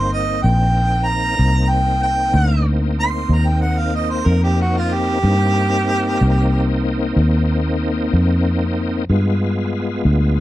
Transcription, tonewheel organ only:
Already playing: A#3 C4 D#4
1.36 A#3 C4 D#4
5.22 A#3 C4 D#4
9.09 G#3 B3 F4

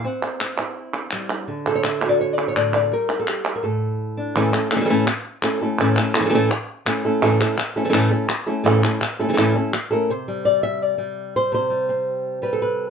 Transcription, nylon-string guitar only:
0.04 C4 F#5
0.23 E5
0.41 E5
0.59 E4
1.13 G3
1.48 D3
1.68 A4
1.75 C#5
1.84 E5
2.03 F#4
2.09 D5
2.21 C#5
2.33 D5
2.48 C#5
2.56 A2 D5
2.75 D5
2.92 G3 A#4
3.20 A4
3.28 G4
3.56 A#4
3.63 A2 A4
4.17 D4
4.36 A2 E3 A3 C#4 E4 A4
4.53 A3 C#4 E4 A4
4.71 A3 C#4 E4 A4
4.76 E3 A3 C#4 E4 A4
4.80 E3 A3 C#4 E4 A4
4.85 E3 A3 C#4 E4 A4
4.89 A2 E3 A3 C#4 E4 A4
5.07 muted nylon-string guitar stroke
5.42 A3 C#4 E4 A4
5.61 A3 C#4 E4 A4
5.79 A2 E3 A3 C#4 E4 A4
5.98 A3 C#4 E4 A4
6.15 A3 C#4 E4 A4
6.20 E3 A3 C#4 E4 A4
6.25 E3 A3 C#4 E4 A4
6.30 A3 C#4 E4 A4
6.34 A2 E3 A3 C#4 E4 A4
6.52 muted nylon-string guitar stroke
6.86 A3 C#4 E4 A4
7.05 A3 C#4 E4 A4
7.22 A2 E3 A3 C#4 E4 A4
7.41 A3 C#4 E4 A4
7.58 muted nylon-string guitar stroke
7.76 A3 C#4 E4 A4
7.84 E3 A3 C#4 E4 A4
7.89 E3 A3 C#4 E4 A4
7.93 A2 E3 A3 C#4 E4 A4
8.11 A3 C#4 E4 A4
8.29 muted nylon-string guitar stroke
8.47 A3 C#4 E4 A4
8.64 A2 E3 A3 C#4 E4 A4
8.84 A3 C#4 E4 A4
9.02 muted nylon-string guitar stroke
9.19 A3 C#4 E4 A4
9.29 E3 A3 C#4 E4 A4
9.33 E3 A3 C#4 E4 A4
9.38 A2 E3 A3 C#4 E4 A4
9.55 A3 C#4 E4 A4
9.73 muted nylon-string guitar stroke
9.91 A3 C#4 E4 A4 A#4
10.10 C3 C5
10.28 G3
10.45 D5
10.63 E5
10.82 D5
10.98 G3
11.36 C5
11.52 C3 C5
11.70 G3
11.89 C4
12.42 G3 B4
12.53 A4
12.62 B4

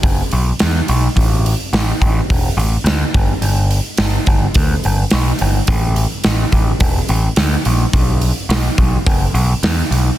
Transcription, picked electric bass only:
0.03 F#1
0.33 B1
0.62 E2
0.89 B1
1.16 A1
1.73 A1
2.01 A1
2.30 E1
2.57 A1
2.84 D2
3.14 G1
3.42 G1
3.98 G1
4.27 G1
4.55 D2
4.85 G1
5.13 B1
5.41 G1
5.68 A1
6.26 A1
6.52 A1
6.80 E1
7.09 A1
7.37 D2
7.66 A#1
7.94 B1
8.49 B1
8.78 B1
9.07 F#1
9.34 B1
9.63 E2
9.91 B1

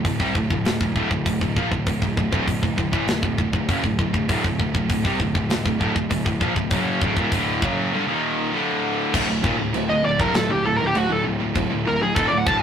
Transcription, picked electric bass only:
0.06 D1
0.20 C2
0.36 D1
0.51 D1
0.67 D1
0.81 D1
0.96 D1
1.11 D1
1.26 D1
1.42 D1
1.57 A#1
1.72 D1
1.87 D1
2.03 D1
2.18 D1
2.33 D1
2.48 D1
2.64 D1
2.78 D1
2.93 A1
3.10 D1
3.23 D1
3.38 D1
3.54 D1
3.70 F#1
3.84 D1
3.99 D1
4.14 D1
4.30 D1
4.45 D1
4.60 D1
4.75 D1
4.90 D1
5.05 C2
5.20 D1
5.35 D1
5.51 D1
5.66 D1
5.81 D1
5.97 D1
6.11 D1
6.26 D1
6.41 A#1
6.57 D1
6.72 F#1
7.02 D1
7.17 D#1
7.32 D1
7.62 F#1
9.15 D1
9.29 D1
9.44 D#1
9.60 D1
9.75 D1
9.90 D1
10.05 D1
10.20 D1
10.36 D1
10.51 D1
10.66 D1
10.81 D1
10.95 D1
11.11 D1
11.27 D1
11.41 D1
11.56 D1
11.72 D1
11.87 D1
12.03 D1
12.17 D#1
12.33 D1
12.47 D1

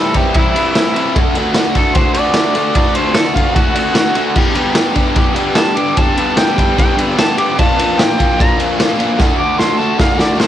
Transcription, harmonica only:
Already playing: A4
0.17 G4
0.35 E4
1.77 A4
1.94 C5
2.14 D5
2.95 C5
3.15 A4
3.34 F4
3.55 F#4
5.56 A5
5.76 D6
5.98 A5
6.37 G5
6.79 G5
7.19 A5
7.38 D6
7.59 A5
8.00 G5
8.41 A#5
9.38 D6
9.58 C6
9.78 A5
9.99 F5
10.20 D5
10.39 C5

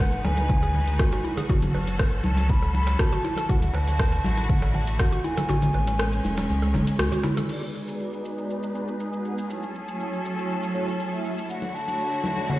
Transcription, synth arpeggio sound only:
0.00 B4
0.63 G#4
0.99 F#4
1.13 F#4
1.24 E4
1.37 G#4
1.49 F#4
1.75 B4
1.99 B4
2.62 A4
3.00 F#4
3.12 F#4
3.24 E4
3.37 A4
3.49 F#4
3.74 B4
3.99 B4
4.62 A4
4.99 F#4
5.12 F#4
5.24 E4
5.37 A4
5.49 F#4
5.74 B4
5.99 B4
6.62 A4
6.99 F#4
7.12 F#4
7.24 E4
7.37 A4

